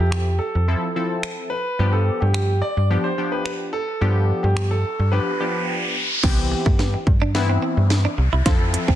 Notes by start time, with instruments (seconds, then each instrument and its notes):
Already playing: analog polysynth F3 C4 E4 A4
0.00 fm bass F2
0.11 grand piano G4, finger snap
0.39 grand piano A4
0.55 fm bass F2
0.68 analog polysynth F3 C4 E4 A4
0.96 analog polysynth F3 C4 E4 A4
1.23 finger snap
1.50 grand piano B4
1.79 fm bass G2, analog polysynth F3 B3 D4 G4
1.93 grand piano A4
2.20 fm bass G2, grand piano G4
2.34 grand piano G4, finger snap
2.62 grand piano D5
2.77 fm bass G2
2.90 analog polysynth F3 B3 D4 G4
3.04 grand piano C5
3.18 analog polysynth F3 B3 D4 G4
3.32 grand piano B4
3.45 grand piano B4, finger snap
3.73 grand piano A4
4.01 fm bass G2, analog polysynth F3 B3 D4 G4, riser
4.43 fm bass G2, grand piano G4
4.57 finger snap
4.71 grand piano A4
4.99 fm bass G2
5.12 analog polysynth F3 B3 D4 G4, grand piano B4
5.40 analog polysynth F3 B3 D4 G4
6.23 fm bass C2, analog polysynth E3 B3 C4 G4, clean electric guitar C4, kick, snare, crash, riser
6.52 muted clean electric guitar stroke
6.66 fm bass G2, clean electric guitar A3, kick
6.79 clean electric guitar B3, snare
6.94 muted clean electric guitar stroke
7.07 fm bass G2, kick
7.22 clean electric guitar D4
7.35 analog polysynth E3 B3 C4 E4, muted clean electric guitar stroke, snare
7.50 clean electric guitar C4
7.62 clean electric guitar C4
7.77 fm bass G2
7.90 snare
8.05 clean electric guitar D4
8.18 fm bass C2, muted clean electric guitar stroke
8.33 fm bass C2, clean electric guitar E4
8.46 fm bass F2, analog polysynth F3 C4 E4 A4, clean electric guitar F4, kick, snare, closed hi-hat
8.74 muted clean electric guitar stroke, closed hi-hat
8.88 fm bass C2, clean electric guitar C4, kick